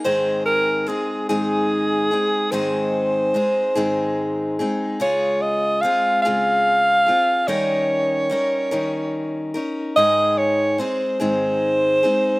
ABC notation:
X:1
M:6/8
L:1/8
Q:3/8=48
K:Ab
V:1 name="Alto saxophone"
c B A A3 | c4- c z | d e f f3 | d4- d z |
e d c c3 |]
V:2 name="Steel-string acoustic guitar"
[A,,E,A,CEA]2 [A,CEA] [A,,E,A,CEA]2 [A,CEA] | [A,,E,A,CEA]2 [A,CEA] [A,,E,A,CEA]2 [A,CEA] | [D,A,FA]2 [A,CFA] [D,A,CFA]2 [CFA] | [E,G,DEB]2 [G,DEB] [E,G,DEB]2 [DEB] |
[A,,E,A,EA]2 [A,CEA] [A,,E,A,CEA]2 [A,CEA] |]